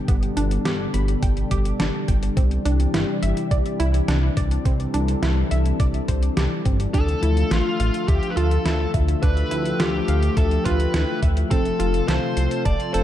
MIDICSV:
0, 0, Header, 1, 6, 480
1, 0, Start_track
1, 0, Tempo, 571429
1, 70, Time_signature, 4, 2, 24, 8
1, 10949, End_track
2, 0, Start_track
2, 0, Title_t, "Lead electric guitar"
2, 0, Program_c, 0, 29
2, 5833, Note_on_c, 0, 69, 104
2, 6311, Note_on_c, 0, 65, 86
2, 6326, Note_off_c, 0, 69, 0
2, 6788, Note_off_c, 0, 65, 0
2, 6791, Note_on_c, 0, 67, 89
2, 6971, Note_on_c, 0, 71, 67
2, 6977, Note_off_c, 0, 67, 0
2, 7026, Note_off_c, 0, 71, 0
2, 7030, Note_on_c, 0, 69, 88
2, 7476, Note_off_c, 0, 69, 0
2, 7751, Note_on_c, 0, 71, 108
2, 8229, Note_on_c, 0, 67, 90
2, 8245, Note_off_c, 0, 71, 0
2, 8709, Note_on_c, 0, 69, 95
2, 8724, Note_off_c, 0, 67, 0
2, 8945, Note_off_c, 0, 69, 0
2, 8949, Note_on_c, 0, 71, 94
2, 9396, Note_off_c, 0, 71, 0
2, 9669, Note_on_c, 0, 69, 84
2, 10146, Note_off_c, 0, 69, 0
2, 10150, Note_on_c, 0, 72, 96
2, 10596, Note_off_c, 0, 72, 0
2, 10630, Note_on_c, 0, 74, 104
2, 10866, Note_off_c, 0, 74, 0
2, 10870, Note_on_c, 0, 72, 100
2, 10949, Note_off_c, 0, 72, 0
2, 10949, End_track
3, 0, Start_track
3, 0, Title_t, "Synth arpeggio sound"
3, 0, Program_c, 1, 84
3, 69, Note_on_c, 1, 59, 82
3, 270, Note_off_c, 1, 59, 0
3, 308, Note_on_c, 1, 62, 76
3, 429, Note_off_c, 1, 62, 0
3, 548, Note_on_c, 1, 67, 77
3, 777, Note_off_c, 1, 67, 0
3, 789, Note_on_c, 1, 83, 77
3, 910, Note_off_c, 1, 83, 0
3, 1029, Note_on_c, 1, 79, 81
3, 1150, Note_off_c, 1, 79, 0
3, 1269, Note_on_c, 1, 67, 99
3, 1497, Note_off_c, 1, 67, 0
3, 1509, Note_on_c, 1, 62, 80
3, 1710, Note_off_c, 1, 62, 0
3, 1749, Note_on_c, 1, 79, 74
3, 1951, Note_off_c, 1, 79, 0
3, 1989, Note_on_c, 1, 60, 82
3, 2190, Note_off_c, 1, 60, 0
3, 2229, Note_on_c, 1, 62, 78
3, 2350, Note_off_c, 1, 62, 0
3, 2469, Note_on_c, 1, 64, 73
3, 2698, Note_off_c, 1, 64, 0
3, 2709, Note_on_c, 1, 76, 81
3, 2830, Note_off_c, 1, 76, 0
3, 2950, Note_on_c, 1, 74, 81
3, 3070, Note_off_c, 1, 74, 0
3, 3189, Note_on_c, 1, 64, 105
3, 3418, Note_off_c, 1, 64, 0
3, 3430, Note_on_c, 1, 62, 81
3, 3631, Note_off_c, 1, 62, 0
3, 3670, Note_on_c, 1, 74, 75
3, 3871, Note_off_c, 1, 74, 0
3, 3909, Note_on_c, 1, 60, 84
3, 4110, Note_off_c, 1, 60, 0
3, 4149, Note_on_c, 1, 62, 75
3, 4270, Note_off_c, 1, 62, 0
3, 4389, Note_on_c, 1, 64, 77
3, 4617, Note_off_c, 1, 64, 0
3, 4629, Note_on_c, 1, 76, 83
3, 4750, Note_off_c, 1, 76, 0
3, 4870, Note_on_c, 1, 74, 83
3, 4990, Note_off_c, 1, 74, 0
3, 5110, Note_on_c, 1, 72, 72
3, 5311, Note_off_c, 1, 72, 0
3, 5350, Note_on_c, 1, 67, 77
3, 5470, Note_off_c, 1, 67, 0
3, 5589, Note_on_c, 1, 60, 70
3, 5710, Note_off_c, 1, 60, 0
3, 5830, Note_on_c, 1, 62, 85
3, 6031, Note_off_c, 1, 62, 0
3, 6069, Note_on_c, 1, 64, 78
3, 6190, Note_off_c, 1, 64, 0
3, 6310, Note_on_c, 1, 65, 73
3, 6538, Note_off_c, 1, 65, 0
3, 6550, Note_on_c, 1, 77, 75
3, 6671, Note_off_c, 1, 77, 0
3, 6790, Note_on_c, 1, 76, 75
3, 6911, Note_off_c, 1, 76, 0
3, 7030, Note_on_c, 1, 65, 106
3, 7258, Note_off_c, 1, 65, 0
3, 7270, Note_on_c, 1, 64, 76
3, 7471, Note_off_c, 1, 64, 0
3, 7510, Note_on_c, 1, 76, 73
3, 7711, Note_off_c, 1, 76, 0
3, 7751, Note_on_c, 1, 62, 83
3, 7951, Note_off_c, 1, 62, 0
3, 7990, Note_on_c, 1, 64, 73
3, 8110, Note_off_c, 1, 64, 0
3, 8230, Note_on_c, 1, 65, 75
3, 8458, Note_off_c, 1, 65, 0
3, 8470, Note_on_c, 1, 77, 79
3, 8590, Note_off_c, 1, 77, 0
3, 8710, Note_on_c, 1, 76, 85
3, 8830, Note_off_c, 1, 76, 0
3, 8949, Note_on_c, 1, 65, 104
3, 9177, Note_off_c, 1, 65, 0
3, 9189, Note_on_c, 1, 64, 77
3, 9391, Note_off_c, 1, 64, 0
3, 9429, Note_on_c, 1, 76, 75
3, 9631, Note_off_c, 1, 76, 0
3, 9669, Note_on_c, 1, 60, 86
3, 9871, Note_off_c, 1, 60, 0
3, 9909, Note_on_c, 1, 65, 77
3, 10030, Note_off_c, 1, 65, 0
3, 10149, Note_on_c, 1, 69, 73
3, 10378, Note_off_c, 1, 69, 0
3, 10389, Note_on_c, 1, 84, 80
3, 10510, Note_off_c, 1, 84, 0
3, 10629, Note_on_c, 1, 81, 77
3, 10750, Note_off_c, 1, 81, 0
3, 10870, Note_on_c, 1, 69, 101
3, 10949, Note_off_c, 1, 69, 0
3, 10949, End_track
4, 0, Start_track
4, 0, Title_t, "Analog synth pad"
4, 0, Program_c, 2, 89
4, 0, Note_on_c, 2, 47, 78
4, 0, Note_on_c, 2, 50, 70
4, 0, Note_on_c, 2, 55, 69
4, 0, Note_on_c, 2, 62, 70
4, 70, Note_on_c, 2, 69, 83
4, 1956, Note_off_c, 2, 47, 0
4, 1957, Note_off_c, 2, 50, 0
4, 1971, Note_off_c, 2, 69, 0
4, 1989, Note_on_c, 2, 48, 79
4, 1989, Note_on_c, 2, 52, 70
4, 1989, Note_on_c, 2, 67, 83
4, 3890, Note_off_c, 2, 67, 0
4, 3910, Note_on_c, 2, 69, 80
4, 5796, Note_off_c, 2, 48, 0
4, 5796, Note_off_c, 2, 52, 0
4, 5796, Note_off_c, 2, 55, 0
4, 5796, Note_off_c, 2, 62, 0
4, 5811, Note_off_c, 2, 69, 0
4, 5829, Note_on_c, 2, 53, 68
4, 5829, Note_on_c, 2, 76, 72
4, 5830, Note_on_c, 2, 50, 77
4, 5830, Note_on_c, 2, 57, 73
4, 5830, Note_on_c, 2, 65, 90
4, 7731, Note_off_c, 2, 65, 0
4, 7749, Note_on_c, 2, 67, 84
4, 9636, Note_off_c, 2, 50, 0
4, 9636, Note_off_c, 2, 76, 0
4, 9650, Note_off_c, 2, 67, 0
4, 9669, Note_on_c, 2, 48, 76
4, 9669, Note_on_c, 2, 65, 71
4, 9669, Note_on_c, 2, 69, 82
4, 10949, Note_off_c, 2, 48, 0
4, 10949, Note_off_c, 2, 53, 0
4, 10949, Note_off_c, 2, 57, 0
4, 10949, Note_off_c, 2, 65, 0
4, 10949, Note_off_c, 2, 69, 0
4, 10949, End_track
5, 0, Start_track
5, 0, Title_t, "Analog synth bass"
5, 0, Program_c, 3, 38
5, 70, Note_on_c, 3, 31, 83
5, 250, Note_off_c, 3, 31, 0
5, 310, Note_on_c, 3, 31, 86
5, 490, Note_off_c, 3, 31, 0
5, 549, Note_on_c, 3, 31, 86
5, 730, Note_off_c, 3, 31, 0
5, 789, Note_on_c, 3, 31, 86
5, 970, Note_off_c, 3, 31, 0
5, 1030, Note_on_c, 3, 31, 87
5, 1210, Note_off_c, 3, 31, 0
5, 1270, Note_on_c, 3, 31, 75
5, 1450, Note_off_c, 3, 31, 0
5, 1510, Note_on_c, 3, 31, 87
5, 1600, Note_off_c, 3, 31, 0
5, 1750, Note_on_c, 3, 31, 80
5, 1930, Note_off_c, 3, 31, 0
5, 1990, Note_on_c, 3, 36, 96
5, 2170, Note_off_c, 3, 36, 0
5, 2230, Note_on_c, 3, 36, 86
5, 2410, Note_off_c, 3, 36, 0
5, 2470, Note_on_c, 3, 31, 81
5, 2560, Note_off_c, 3, 31, 0
5, 2711, Note_on_c, 3, 31, 76
5, 2800, Note_off_c, 3, 31, 0
5, 2950, Note_on_c, 3, 36, 98
5, 3040, Note_off_c, 3, 36, 0
5, 3191, Note_on_c, 3, 36, 94
5, 3370, Note_off_c, 3, 36, 0
5, 3430, Note_on_c, 3, 36, 77
5, 3610, Note_off_c, 3, 36, 0
5, 3670, Note_on_c, 3, 36, 80
5, 3850, Note_off_c, 3, 36, 0
5, 3910, Note_on_c, 3, 36, 88
5, 4090, Note_off_c, 3, 36, 0
5, 4150, Note_on_c, 3, 36, 87
5, 4330, Note_off_c, 3, 36, 0
5, 4390, Note_on_c, 3, 36, 89
5, 4570, Note_off_c, 3, 36, 0
5, 4631, Note_on_c, 3, 36, 86
5, 4810, Note_off_c, 3, 36, 0
5, 4870, Note_on_c, 3, 36, 91
5, 5050, Note_off_c, 3, 36, 0
5, 5110, Note_on_c, 3, 36, 77
5, 5290, Note_off_c, 3, 36, 0
5, 5350, Note_on_c, 3, 36, 77
5, 5440, Note_off_c, 3, 36, 0
5, 5590, Note_on_c, 3, 31, 99
5, 5770, Note_off_c, 3, 31, 0
5, 5830, Note_on_c, 3, 38, 99
5, 6010, Note_off_c, 3, 38, 0
5, 6070, Note_on_c, 3, 38, 81
5, 6250, Note_off_c, 3, 38, 0
5, 6311, Note_on_c, 3, 33, 80
5, 6400, Note_off_c, 3, 33, 0
5, 6551, Note_on_c, 3, 33, 76
5, 6640, Note_off_c, 3, 33, 0
5, 6790, Note_on_c, 3, 38, 94
5, 6880, Note_off_c, 3, 38, 0
5, 7030, Note_on_c, 3, 38, 91
5, 7210, Note_off_c, 3, 38, 0
5, 7270, Note_on_c, 3, 38, 79
5, 7450, Note_off_c, 3, 38, 0
5, 7510, Note_on_c, 3, 38, 83
5, 7690, Note_off_c, 3, 38, 0
5, 7750, Note_on_c, 3, 38, 83
5, 7930, Note_off_c, 3, 38, 0
5, 7990, Note_on_c, 3, 38, 85
5, 8170, Note_off_c, 3, 38, 0
5, 8230, Note_on_c, 3, 38, 91
5, 8410, Note_off_c, 3, 38, 0
5, 8471, Note_on_c, 3, 38, 84
5, 8650, Note_off_c, 3, 38, 0
5, 8710, Note_on_c, 3, 38, 88
5, 8890, Note_off_c, 3, 38, 0
5, 8950, Note_on_c, 3, 38, 79
5, 9130, Note_off_c, 3, 38, 0
5, 9190, Note_on_c, 3, 38, 90
5, 9280, Note_off_c, 3, 38, 0
5, 9431, Note_on_c, 3, 38, 82
5, 9610, Note_off_c, 3, 38, 0
5, 9671, Note_on_c, 3, 29, 95
5, 9850, Note_off_c, 3, 29, 0
5, 9910, Note_on_c, 3, 29, 80
5, 10090, Note_off_c, 3, 29, 0
5, 10150, Note_on_c, 3, 36, 79
5, 10240, Note_off_c, 3, 36, 0
5, 10390, Note_on_c, 3, 36, 73
5, 10480, Note_off_c, 3, 36, 0
5, 10630, Note_on_c, 3, 29, 102
5, 10720, Note_off_c, 3, 29, 0
5, 10870, Note_on_c, 3, 29, 92
5, 10949, Note_off_c, 3, 29, 0
5, 10949, End_track
6, 0, Start_track
6, 0, Title_t, "Drums"
6, 70, Note_on_c, 9, 36, 121
6, 71, Note_on_c, 9, 42, 76
6, 154, Note_off_c, 9, 36, 0
6, 155, Note_off_c, 9, 42, 0
6, 190, Note_on_c, 9, 42, 37
6, 274, Note_off_c, 9, 42, 0
6, 310, Note_on_c, 9, 42, 85
6, 394, Note_off_c, 9, 42, 0
6, 430, Note_on_c, 9, 42, 53
6, 514, Note_off_c, 9, 42, 0
6, 550, Note_on_c, 9, 38, 114
6, 550, Note_on_c, 9, 42, 75
6, 634, Note_off_c, 9, 38, 0
6, 634, Note_off_c, 9, 42, 0
6, 790, Note_on_c, 9, 42, 80
6, 874, Note_off_c, 9, 42, 0
6, 910, Note_on_c, 9, 42, 52
6, 994, Note_off_c, 9, 42, 0
6, 1030, Note_on_c, 9, 36, 111
6, 1030, Note_on_c, 9, 42, 81
6, 1114, Note_off_c, 9, 36, 0
6, 1114, Note_off_c, 9, 42, 0
6, 1149, Note_on_c, 9, 42, 37
6, 1233, Note_off_c, 9, 42, 0
6, 1269, Note_on_c, 9, 42, 81
6, 1270, Note_on_c, 9, 36, 61
6, 1353, Note_off_c, 9, 42, 0
6, 1354, Note_off_c, 9, 36, 0
6, 1389, Note_on_c, 9, 42, 51
6, 1473, Note_off_c, 9, 42, 0
6, 1510, Note_on_c, 9, 38, 122
6, 1510, Note_on_c, 9, 42, 83
6, 1594, Note_off_c, 9, 38, 0
6, 1594, Note_off_c, 9, 42, 0
6, 1750, Note_on_c, 9, 36, 97
6, 1750, Note_on_c, 9, 42, 77
6, 1834, Note_off_c, 9, 36, 0
6, 1834, Note_off_c, 9, 42, 0
6, 1870, Note_on_c, 9, 42, 54
6, 1954, Note_off_c, 9, 42, 0
6, 1990, Note_on_c, 9, 36, 124
6, 1990, Note_on_c, 9, 42, 79
6, 2074, Note_off_c, 9, 36, 0
6, 2074, Note_off_c, 9, 42, 0
6, 2110, Note_on_c, 9, 42, 37
6, 2194, Note_off_c, 9, 42, 0
6, 2230, Note_on_c, 9, 42, 77
6, 2314, Note_off_c, 9, 42, 0
6, 2350, Note_on_c, 9, 42, 51
6, 2434, Note_off_c, 9, 42, 0
6, 2470, Note_on_c, 9, 38, 109
6, 2470, Note_on_c, 9, 42, 72
6, 2554, Note_off_c, 9, 38, 0
6, 2554, Note_off_c, 9, 42, 0
6, 2710, Note_on_c, 9, 42, 80
6, 2794, Note_off_c, 9, 42, 0
6, 2831, Note_on_c, 9, 42, 52
6, 2915, Note_off_c, 9, 42, 0
6, 2950, Note_on_c, 9, 36, 121
6, 2950, Note_on_c, 9, 42, 73
6, 3034, Note_off_c, 9, 36, 0
6, 3034, Note_off_c, 9, 42, 0
6, 3071, Note_on_c, 9, 42, 35
6, 3155, Note_off_c, 9, 42, 0
6, 3190, Note_on_c, 9, 42, 79
6, 3274, Note_off_c, 9, 42, 0
6, 3311, Note_on_c, 9, 42, 52
6, 3395, Note_off_c, 9, 42, 0
6, 3430, Note_on_c, 9, 38, 127
6, 3430, Note_on_c, 9, 42, 80
6, 3514, Note_off_c, 9, 38, 0
6, 3514, Note_off_c, 9, 42, 0
6, 3670, Note_on_c, 9, 36, 105
6, 3670, Note_on_c, 9, 42, 82
6, 3754, Note_off_c, 9, 36, 0
6, 3754, Note_off_c, 9, 42, 0
6, 3791, Note_on_c, 9, 42, 54
6, 3875, Note_off_c, 9, 42, 0
6, 3910, Note_on_c, 9, 36, 117
6, 3910, Note_on_c, 9, 42, 75
6, 3994, Note_off_c, 9, 36, 0
6, 3994, Note_off_c, 9, 42, 0
6, 4031, Note_on_c, 9, 42, 35
6, 4115, Note_off_c, 9, 42, 0
6, 4150, Note_on_c, 9, 42, 76
6, 4234, Note_off_c, 9, 42, 0
6, 4270, Note_on_c, 9, 42, 50
6, 4354, Note_off_c, 9, 42, 0
6, 4390, Note_on_c, 9, 38, 117
6, 4390, Note_on_c, 9, 42, 71
6, 4474, Note_off_c, 9, 38, 0
6, 4474, Note_off_c, 9, 42, 0
6, 4630, Note_on_c, 9, 42, 76
6, 4714, Note_off_c, 9, 42, 0
6, 4751, Note_on_c, 9, 42, 50
6, 4835, Note_off_c, 9, 42, 0
6, 4870, Note_on_c, 9, 36, 109
6, 4870, Note_on_c, 9, 42, 74
6, 4954, Note_off_c, 9, 36, 0
6, 4954, Note_off_c, 9, 42, 0
6, 4990, Note_on_c, 9, 42, 34
6, 5074, Note_off_c, 9, 42, 0
6, 5110, Note_on_c, 9, 36, 60
6, 5110, Note_on_c, 9, 42, 70
6, 5194, Note_off_c, 9, 36, 0
6, 5194, Note_off_c, 9, 42, 0
6, 5230, Note_on_c, 9, 42, 51
6, 5314, Note_off_c, 9, 42, 0
6, 5351, Note_on_c, 9, 38, 121
6, 5351, Note_on_c, 9, 42, 75
6, 5435, Note_off_c, 9, 38, 0
6, 5435, Note_off_c, 9, 42, 0
6, 5590, Note_on_c, 9, 36, 101
6, 5591, Note_on_c, 9, 42, 73
6, 5674, Note_off_c, 9, 36, 0
6, 5675, Note_off_c, 9, 42, 0
6, 5710, Note_on_c, 9, 42, 52
6, 5794, Note_off_c, 9, 42, 0
6, 5830, Note_on_c, 9, 36, 109
6, 5831, Note_on_c, 9, 42, 73
6, 5914, Note_off_c, 9, 36, 0
6, 5915, Note_off_c, 9, 42, 0
6, 5951, Note_on_c, 9, 42, 35
6, 6035, Note_off_c, 9, 42, 0
6, 6071, Note_on_c, 9, 42, 75
6, 6155, Note_off_c, 9, 42, 0
6, 6191, Note_on_c, 9, 42, 48
6, 6275, Note_off_c, 9, 42, 0
6, 6310, Note_on_c, 9, 38, 108
6, 6310, Note_on_c, 9, 42, 68
6, 6394, Note_off_c, 9, 38, 0
6, 6394, Note_off_c, 9, 42, 0
6, 6551, Note_on_c, 9, 42, 76
6, 6635, Note_off_c, 9, 42, 0
6, 6671, Note_on_c, 9, 42, 50
6, 6755, Note_off_c, 9, 42, 0
6, 6790, Note_on_c, 9, 36, 116
6, 6791, Note_on_c, 9, 42, 75
6, 6874, Note_off_c, 9, 36, 0
6, 6875, Note_off_c, 9, 42, 0
6, 6911, Note_on_c, 9, 42, 32
6, 6995, Note_off_c, 9, 42, 0
6, 7031, Note_on_c, 9, 42, 70
6, 7115, Note_off_c, 9, 42, 0
6, 7151, Note_on_c, 9, 42, 49
6, 7235, Note_off_c, 9, 42, 0
6, 7271, Note_on_c, 9, 38, 116
6, 7271, Note_on_c, 9, 42, 76
6, 7355, Note_off_c, 9, 38, 0
6, 7355, Note_off_c, 9, 42, 0
6, 7510, Note_on_c, 9, 36, 102
6, 7510, Note_on_c, 9, 42, 72
6, 7594, Note_off_c, 9, 36, 0
6, 7594, Note_off_c, 9, 42, 0
6, 7631, Note_on_c, 9, 42, 49
6, 7715, Note_off_c, 9, 42, 0
6, 7750, Note_on_c, 9, 36, 114
6, 7750, Note_on_c, 9, 42, 72
6, 7834, Note_off_c, 9, 36, 0
6, 7834, Note_off_c, 9, 42, 0
6, 7870, Note_on_c, 9, 42, 34
6, 7954, Note_off_c, 9, 42, 0
6, 7990, Note_on_c, 9, 42, 74
6, 8074, Note_off_c, 9, 42, 0
6, 8110, Note_on_c, 9, 42, 46
6, 8194, Note_off_c, 9, 42, 0
6, 8230, Note_on_c, 9, 38, 110
6, 8230, Note_on_c, 9, 42, 74
6, 8314, Note_off_c, 9, 38, 0
6, 8314, Note_off_c, 9, 42, 0
6, 8469, Note_on_c, 9, 42, 75
6, 8553, Note_off_c, 9, 42, 0
6, 8590, Note_on_c, 9, 42, 46
6, 8674, Note_off_c, 9, 42, 0
6, 8710, Note_on_c, 9, 36, 103
6, 8710, Note_on_c, 9, 42, 72
6, 8794, Note_off_c, 9, 36, 0
6, 8794, Note_off_c, 9, 42, 0
6, 8831, Note_on_c, 9, 42, 33
6, 8915, Note_off_c, 9, 42, 0
6, 8950, Note_on_c, 9, 36, 53
6, 8950, Note_on_c, 9, 42, 73
6, 9034, Note_off_c, 9, 36, 0
6, 9034, Note_off_c, 9, 42, 0
6, 9070, Note_on_c, 9, 42, 47
6, 9154, Note_off_c, 9, 42, 0
6, 9189, Note_on_c, 9, 38, 116
6, 9189, Note_on_c, 9, 42, 76
6, 9273, Note_off_c, 9, 38, 0
6, 9273, Note_off_c, 9, 42, 0
6, 9430, Note_on_c, 9, 36, 93
6, 9430, Note_on_c, 9, 42, 74
6, 9514, Note_off_c, 9, 36, 0
6, 9514, Note_off_c, 9, 42, 0
6, 9550, Note_on_c, 9, 42, 51
6, 9634, Note_off_c, 9, 42, 0
6, 9669, Note_on_c, 9, 42, 77
6, 9670, Note_on_c, 9, 36, 110
6, 9753, Note_off_c, 9, 42, 0
6, 9754, Note_off_c, 9, 36, 0
6, 9790, Note_on_c, 9, 42, 34
6, 9874, Note_off_c, 9, 42, 0
6, 9910, Note_on_c, 9, 42, 79
6, 9994, Note_off_c, 9, 42, 0
6, 10030, Note_on_c, 9, 42, 47
6, 10114, Note_off_c, 9, 42, 0
6, 10150, Note_on_c, 9, 38, 106
6, 10150, Note_on_c, 9, 42, 73
6, 10234, Note_off_c, 9, 38, 0
6, 10234, Note_off_c, 9, 42, 0
6, 10390, Note_on_c, 9, 42, 76
6, 10474, Note_off_c, 9, 42, 0
6, 10510, Note_on_c, 9, 42, 51
6, 10594, Note_off_c, 9, 42, 0
6, 10630, Note_on_c, 9, 36, 104
6, 10630, Note_on_c, 9, 42, 73
6, 10714, Note_off_c, 9, 36, 0
6, 10714, Note_off_c, 9, 42, 0
6, 10750, Note_on_c, 9, 42, 35
6, 10834, Note_off_c, 9, 42, 0
6, 10870, Note_on_c, 9, 42, 71
6, 10949, Note_off_c, 9, 42, 0
6, 10949, End_track
0, 0, End_of_file